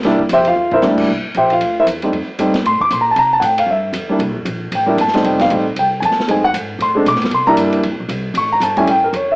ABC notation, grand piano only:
X:1
M:4/4
L:1/8
Q:"Swing" 1/4=231
K:Cmix
V:1 name="Grand piano"
z2 [Gceg] [Ff]2 [EBce] z2 | z2 [Gceg] [Ff]2 [EBce] z2 | z4 c' d' (3c' b a | b a [^fg] =f e4- |
e2 z2 g2 a2 | g f z2 g2 [_a=a]2 | _a ^f z2 c'2 d'2 | c' b z6 |
^c' b a _a g B ^c e |]
V:2 name="Grand piano"
[G,B,DE] z4 z [G,B,DE]2 | z6 z [G,A,C_E] | z2 [G,A,C_E] z4 z | z6 z [G,B,DE] |
z4 z [G,B,DE] z [G,A,C_E]- | [G,A,C_E]2 [G,A,CE] z4 z | [_A,=A,C^D] z4 [_A,=A,C=D] z2 | z [G,B,DE]3 z4 |
z3 [G,A,^CE] z4 |]